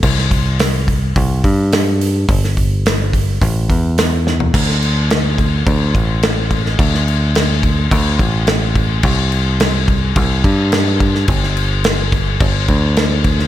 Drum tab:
CC |x---------------|----------------|x-x-x-x-x-x-x-x-|x-x-x-x-x-x-x-x-|
HH |--o-o-o-o-o-o-o-|o-o-o-o-o-o-o---|----------------|----------------|
SD |-o--o-------o---|-o--o-------o-o-|-o--o-------o--o|-o--o-------o---|
FT |----------------|---------------o|----------------|----------------|
BD |o-o---o-o-o-----|o-o---o-o-o-----|o-----o-o-o---o-|o-----o-o-o---o-|

CC |x-x-x-x-x-x-x-x-|x-x-x-x-x-x-x-x-|
HH |----------------|----------------|
SD |----o-------o--o|-o--o-------o--o|
FT |----------------|----------------|
BD |o-----o-o-o---o-|o-----o-o-o---o-|